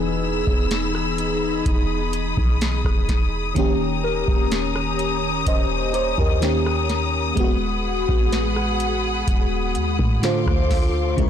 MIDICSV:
0, 0, Header, 1, 6, 480
1, 0, Start_track
1, 0, Tempo, 952381
1, 1796, Time_signature, 4, 2, 24, 8
1, 5694, End_track
2, 0, Start_track
2, 0, Title_t, "String section"
2, 0, Program_c, 0, 48
2, 0, Note_on_c, 0, 63, 71
2, 0, Note_on_c, 0, 68, 78
2, 0, Note_on_c, 0, 83, 72
2, 0, Note_on_c, 0, 88, 91
2, 827, Note_off_c, 0, 88, 0
2, 838, Note_on_c, 0, 87, 90
2, 1776, Note_off_c, 0, 68, 0
2, 1777, Note_off_c, 0, 63, 0
2, 1777, Note_off_c, 0, 83, 0
2, 1794, Note_on_c, 0, 82, 72
2, 1795, Note_on_c, 0, 61, 74
2, 1795, Note_on_c, 0, 67, 77
2, 3221, Note_off_c, 0, 82, 0
2, 3235, Note_on_c, 0, 82, 73
2, 3696, Note_off_c, 0, 61, 0
2, 3696, Note_off_c, 0, 67, 0
2, 3711, Note_off_c, 0, 82, 0
2, 3718, Note_on_c, 0, 68, 80
2, 3718, Note_on_c, 0, 78, 75
2, 3718, Note_on_c, 0, 83, 74
2, 5137, Note_off_c, 0, 87, 0
2, 5142, Note_off_c, 0, 68, 0
2, 5142, Note_off_c, 0, 78, 0
2, 5143, Note_off_c, 0, 83, 0
2, 5156, Note_on_c, 0, 77, 72
2, 5156, Note_on_c, 0, 86, 87
2, 5157, Note_on_c, 0, 69, 77
2, 5157, Note_on_c, 0, 84, 67
2, 5631, Note_off_c, 0, 69, 0
2, 5631, Note_off_c, 0, 77, 0
2, 5631, Note_off_c, 0, 84, 0
2, 5631, Note_off_c, 0, 86, 0
2, 5635, Note_on_c, 0, 85, 86
2, 5636, Note_on_c, 0, 68, 79
2, 5636, Note_on_c, 0, 73, 74
2, 5636, Note_on_c, 0, 83, 73
2, 5694, Note_off_c, 0, 68, 0
2, 5694, Note_off_c, 0, 73, 0
2, 5694, Note_off_c, 0, 83, 0
2, 5694, Note_off_c, 0, 85, 0
2, 5694, End_track
3, 0, Start_track
3, 0, Title_t, "Synth bell"
3, 0, Program_c, 1, 98
3, 0, Note_on_c, 1, 71, 75
3, 788, Note_off_c, 1, 71, 0
3, 2036, Note_on_c, 1, 70, 71
3, 2949, Note_off_c, 1, 70, 0
3, 2992, Note_on_c, 1, 67, 73
3, 3454, Note_off_c, 1, 67, 0
3, 4195, Note_on_c, 1, 71, 59
3, 5108, Note_off_c, 1, 71, 0
3, 5694, End_track
4, 0, Start_track
4, 0, Title_t, "FM electric piano"
4, 0, Program_c, 2, 5
4, 0, Control_c, 2, 64, 127
4, 0, Note_on_c, 2, 52, 72
4, 0, Note_on_c, 2, 59, 69
4, 0, Note_on_c, 2, 63, 69
4, 0, Note_on_c, 2, 68, 84
4, 1772, Note_off_c, 2, 52, 0
4, 1776, Note_off_c, 2, 59, 0
4, 1780, Note_off_c, 2, 63, 0
4, 1788, Note_on_c, 2, 51, 76
4, 1795, Note_on_c, 2, 58, 70
4, 1800, Note_off_c, 2, 68, 0
4, 1803, Control_c, 2, 64, 0
4, 1803, Note_on_c, 2, 61, 71
4, 1811, Note_on_c, 2, 67, 82
4, 1883, Control_c, 2, 64, 127
4, 2744, Note_off_c, 2, 67, 0
4, 2761, Note_on_c, 2, 75, 69
4, 2763, Note_on_c, 2, 72, 55
4, 2986, Note_off_c, 2, 75, 0
4, 2988, Note_off_c, 2, 72, 0
4, 2998, Note_on_c, 2, 72, 77
4, 3111, Note_off_c, 2, 72, 0
4, 3120, Note_on_c, 2, 70, 63
4, 3122, Note_on_c, 2, 67, 55
4, 3211, Note_off_c, 2, 51, 0
4, 3215, Note_off_c, 2, 58, 0
4, 3219, Note_off_c, 2, 61, 0
4, 3232, Note_on_c, 2, 51, 74
4, 3236, Note_on_c, 2, 58, 72
4, 3237, Note_off_c, 2, 67, 0
4, 3240, Note_on_c, 2, 61, 67
4, 3242, Control_c, 2, 64, 0
4, 3243, Note_on_c, 2, 67, 83
4, 3340, Control_c, 2, 64, 127
4, 3346, Note_off_c, 2, 70, 0
4, 3707, Note_on_c, 2, 56, 74
4, 3714, Note_off_c, 2, 51, 0
4, 3716, Note_off_c, 2, 58, 0
4, 3718, Note_off_c, 2, 61, 0
4, 3718, Note_on_c, 2, 59, 70
4, 3720, Note_off_c, 2, 67, 0
4, 3723, Control_c, 2, 64, 0
4, 3730, Note_on_c, 2, 66, 85
4, 3810, Control_c, 2, 64, 127
4, 5131, Note_off_c, 2, 56, 0
4, 5137, Note_off_c, 2, 59, 0
4, 5143, Note_off_c, 2, 66, 0
4, 5153, Note_on_c, 2, 50, 75
4, 5158, Note_on_c, 2, 57, 70
4, 5161, Note_on_c, 2, 65, 70
4, 5163, Control_c, 2, 64, 0
4, 5165, Note_on_c, 2, 72, 78
4, 5245, Control_c, 2, 64, 127
4, 5628, Note_on_c, 2, 49, 76
4, 5634, Note_off_c, 2, 50, 0
4, 5636, Note_on_c, 2, 56, 71
4, 5637, Note_off_c, 2, 57, 0
4, 5638, Note_off_c, 2, 65, 0
4, 5640, Note_off_c, 2, 72, 0
4, 5643, Control_c, 2, 64, 0
4, 5644, Note_on_c, 2, 64, 66
4, 5651, Note_on_c, 2, 70, 64
4, 5676, Note_off_c, 2, 70, 0
4, 5694, Note_off_c, 2, 49, 0
4, 5694, Note_off_c, 2, 56, 0
4, 5694, Note_off_c, 2, 64, 0
4, 5694, End_track
5, 0, Start_track
5, 0, Title_t, "808-style bass"
5, 0, Program_c, 3, 38
5, 0, Note_on_c, 3, 28, 105
5, 222, Note_off_c, 3, 28, 0
5, 238, Note_on_c, 3, 28, 96
5, 817, Note_off_c, 3, 28, 0
5, 836, Note_on_c, 3, 28, 116
5, 1182, Note_off_c, 3, 28, 0
5, 1196, Note_on_c, 3, 35, 99
5, 1426, Note_off_c, 3, 35, 0
5, 1435, Note_on_c, 3, 28, 104
5, 1781, Note_off_c, 3, 28, 0
5, 1796, Note_on_c, 3, 27, 102
5, 2141, Note_off_c, 3, 27, 0
5, 2157, Note_on_c, 3, 27, 97
5, 2736, Note_off_c, 3, 27, 0
5, 2755, Note_on_c, 3, 27, 110
5, 3101, Note_off_c, 3, 27, 0
5, 3115, Note_on_c, 3, 39, 98
5, 3695, Note_off_c, 3, 39, 0
5, 3715, Note_on_c, 3, 27, 107
5, 4061, Note_off_c, 3, 27, 0
5, 4077, Note_on_c, 3, 33, 94
5, 4656, Note_off_c, 3, 33, 0
5, 4675, Note_on_c, 3, 27, 113
5, 4915, Note_on_c, 3, 39, 91
5, 4923, Note_off_c, 3, 27, 0
5, 5029, Note_off_c, 3, 39, 0
5, 5036, Note_on_c, 3, 45, 104
5, 5266, Note_off_c, 3, 45, 0
5, 5274, Note_on_c, 3, 38, 105
5, 5621, Note_off_c, 3, 38, 0
5, 5635, Note_on_c, 3, 37, 107
5, 5694, Note_off_c, 3, 37, 0
5, 5694, End_track
6, 0, Start_track
6, 0, Title_t, "Drums"
6, 238, Note_on_c, 9, 36, 91
6, 288, Note_off_c, 9, 36, 0
6, 357, Note_on_c, 9, 42, 70
6, 359, Note_on_c, 9, 38, 121
6, 407, Note_off_c, 9, 42, 0
6, 410, Note_off_c, 9, 38, 0
6, 478, Note_on_c, 9, 37, 69
6, 528, Note_off_c, 9, 37, 0
6, 596, Note_on_c, 9, 42, 65
6, 647, Note_off_c, 9, 42, 0
6, 836, Note_on_c, 9, 36, 98
6, 837, Note_on_c, 9, 42, 80
6, 886, Note_off_c, 9, 36, 0
6, 887, Note_off_c, 9, 42, 0
6, 1074, Note_on_c, 9, 42, 67
6, 1124, Note_off_c, 9, 42, 0
6, 1196, Note_on_c, 9, 36, 87
6, 1246, Note_off_c, 9, 36, 0
6, 1317, Note_on_c, 9, 42, 65
6, 1320, Note_on_c, 9, 38, 118
6, 1367, Note_off_c, 9, 42, 0
6, 1370, Note_off_c, 9, 38, 0
6, 1434, Note_on_c, 9, 36, 95
6, 1440, Note_on_c, 9, 37, 95
6, 1485, Note_off_c, 9, 36, 0
6, 1490, Note_off_c, 9, 37, 0
6, 1556, Note_on_c, 9, 36, 90
6, 1557, Note_on_c, 9, 42, 67
6, 1558, Note_on_c, 9, 38, 67
6, 1606, Note_off_c, 9, 36, 0
6, 1607, Note_off_c, 9, 42, 0
6, 1609, Note_off_c, 9, 38, 0
6, 1795, Note_on_c, 9, 36, 106
6, 1795, Note_on_c, 9, 42, 69
6, 1846, Note_off_c, 9, 36, 0
6, 1846, Note_off_c, 9, 42, 0
6, 2157, Note_on_c, 9, 36, 93
6, 2208, Note_off_c, 9, 36, 0
6, 2276, Note_on_c, 9, 42, 74
6, 2278, Note_on_c, 9, 38, 120
6, 2326, Note_off_c, 9, 42, 0
6, 2328, Note_off_c, 9, 38, 0
6, 2397, Note_on_c, 9, 37, 73
6, 2447, Note_off_c, 9, 37, 0
6, 2516, Note_on_c, 9, 42, 65
6, 2566, Note_off_c, 9, 42, 0
6, 2754, Note_on_c, 9, 42, 80
6, 2755, Note_on_c, 9, 36, 88
6, 2805, Note_off_c, 9, 36, 0
6, 2805, Note_off_c, 9, 42, 0
6, 2994, Note_on_c, 9, 42, 66
6, 3044, Note_off_c, 9, 42, 0
6, 3116, Note_on_c, 9, 36, 87
6, 3166, Note_off_c, 9, 36, 0
6, 3236, Note_on_c, 9, 42, 67
6, 3239, Note_on_c, 9, 38, 124
6, 3287, Note_off_c, 9, 42, 0
6, 3290, Note_off_c, 9, 38, 0
6, 3359, Note_on_c, 9, 37, 90
6, 3409, Note_off_c, 9, 37, 0
6, 3475, Note_on_c, 9, 42, 65
6, 3477, Note_on_c, 9, 38, 68
6, 3525, Note_off_c, 9, 42, 0
6, 3527, Note_off_c, 9, 38, 0
6, 3715, Note_on_c, 9, 36, 114
6, 3715, Note_on_c, 9, 42, 65
6, 3765, Note_off_c, 9, 36, 0
6, 3765, Note_off_c, 9, 42, 0
6, 4077, Note_on_c, 9, 36, 89
6, 4127, Note_off_c, 9, 36, 0
6, 4196, Note_on_c, 9, 42, 70
6, 4198, Note_on_c, 9, 38, 127
6, 4246, Note_off_c, 9, 42, 0
6, 4249, Note_off_c, 9, 38, 0
6, 4316, Note_on_c, 9, 37, 73
6, 4367, Note_off_c, 9, 37, 0
6, 4435, Note_on_c, 9, 42, 64
6, 4486, Note_off_c, 9, 42, 0
6, 4675, Note_on_c, 9, 36, 90
6, 4675, Note_on_c, 9, 42, 78
6, 4725, Note_off_c, 9, 36, 0
6, 4726, Note_off_c, 9, 42, 0
6, 4914, Note_on_c, 9, 42, 65
6, 4965, Note_off_c, 9, 42, 0
6, 5036, Note_on_c, 9, 36, 86
6, 5086, Note_off_c, 9, 36, 0
6, 5156, Note_on_c, 9, 42, 67
6, 5159, Note_on_c, 9, 38, 117
6, 5207, Note_off_c, 9, 42, 0
6, 5210, Note_off_c, 9, 38, 0
6, 5274, Note_on_c, 9, 36, 98
6, 5280, Note_on_c, 9, 37, 89
6, 5325, Note_off_c, 9, 36, 0
6, 5330, Note_off_c, 9, 37, 0
6, 5395, Note_on_c, 9, 36, 94
6, 5396, Note_on_c, 9, 46, 70
6, 5398, Note_on_c, 9, 38, 67
6, 5446, Note_off_c, 9, 36, 0
6, 5446, Note_off_c, 9, 46, 0
6, 5448, Note_off_c, 9, 38, 0
6, 5635, Note_on_c, 9, 36, 109
6, 5635, Note_on_c, 9, 42, 66
6, 5685, Note_off_c, 9, 36, 0
6, 5685, Note_off_c, 9, 42, 0
6, 5694, End_track
0, 0, End_of_file